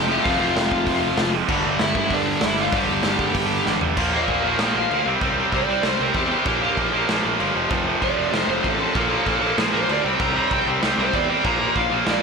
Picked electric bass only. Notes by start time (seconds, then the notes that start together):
Already playing: F1
0.26 F1
0.40 F1
0.56 F1
0.71 F1
0.87 F1
1.18 F1
1.49 G1
1.65 G1
1.80 G1
1.96 G1
2.10 G1
2.43 G1
2.73 G1
2.89 G1
3.04 G1
3.19 G1
3.35 G1
3.67 A1
3.97 A#1
4.28 A#1
4.45 A#1
4.60 A#1
4.75 A#1
4.91 D2
5.06 C2
5.21 C2
5.53 C2
5.68 C2
5.84 C2
6.00 C2
6.15 E2
6.46 A#1
6.77 A#1
6.94 A#1
7.09 A#1
7.25 A#1
7.40 G1
7.55 F1
7.71 F1
8.02 F1
8.18 F1
8.32 F1
8.48 F1
8.65 A1
8.95 A#1
9.27 A#1
9.42 A#1
9.58 A#1
9.74 A#1
9.89 D2
10.05 C2
10.20 C2
10.51 C2
10.66 C2
10.83 C2
10.98 C2
11.14 E2
11.45 A#1
11.76 A#1
11.91 A#1
12.06 A#1